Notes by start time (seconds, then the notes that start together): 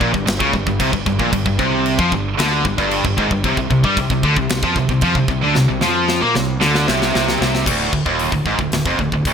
0.00 A#1 A#2, kick
0.14 G1 G2, kick
0.27 G1 G2, snare, crash
0.40 C#2 C#3, kick
0.53 G1 G2, kick
0.67 G1 G2, kick
0.80 C2 C3, kick, crash
0.93 G1 G2, kick
1.06 G1 G2, kick
1.19 A#1 A#2, kick
1.33 G1 G2, kick, crash
1.46 G1 G2, kick
1.59 C2 C3, kick
1.86 crash
1.99 F2 F3, kick
2.12 G1 G2, kick
2.38 D2 D3, snare, crash
2.65 G1 G2, kick
2.78 G1 G2, kick
2.91 crash
3.05 G1 G2, kick
3.17 G#1 G#2, kick
3.31 G1 G2, kick
3.44 C2 C3, kick, crash
3.57 C2 C3, kick
3.70 C2 C3, kick
3.84 G2 G3, kick
3.97 C2 C3, kick, crash
4.10 C2 C3, kick
4.23 D2 D3, kick
4.36 C2 C3, kick
4.49 C2 C3, snare, crash
4.63 F2 F3, kick
4.76 C2 C3, kick
4.89 C2 C3, kick
5.01 F2 F3, kick, crash
5.15 C2 C3, kick
5.28 C2 C3, kick
5.43 D2 D3
5.55 C2 C3, snare
5.70 C2 C3
5.81 F2 F3, snare
6.09 snare
6.22 A#2 A#3
6.35 C2 C3, snare
6.61 D2 D3, snare
6.75 snare
6.88 C2 C3, snare
7.02 snare
7.14 C2 C3, snare
7.28 snare
7.39 C2 C3, snare
7.55 snare
7.66 D1 D2, kick, crash
7.93 D1 D2, kick
8.06 D#1 D#2, kick
8.19 open hi-hat
8.32 D1 D2, kick
8.46 G#1 G#2, kick
8.59 D1 D2, kick
8.71 D1 D2, snare, open hi-hat
8.85 F1 F2, kick
8.99 D1 D2, kick
9.12 D1 D2, kick
9.25 D1 D2, kick, open hi-hat